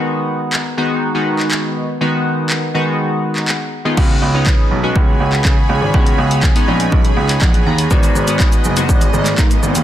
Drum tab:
CC |----------------|----------------|x---------------|----------------|
HH |----------------|----------------|----------------|-x-x-x-x-x-x-x-x|
SH |----------------|----------------|----------------|----------------|
CP |----x------xx---|----x------xx---|----x------xx---|----x------xx---|
BD |----------------|----------------|o---o---o---o---|o---o---o---o---|

CC |----------------|
HH |-x-x-x-x-x-x-x-x|
SH |xxxxxxxxxxxxxxxx|
CP |----x------xx---|
BD |o---o---o---o---|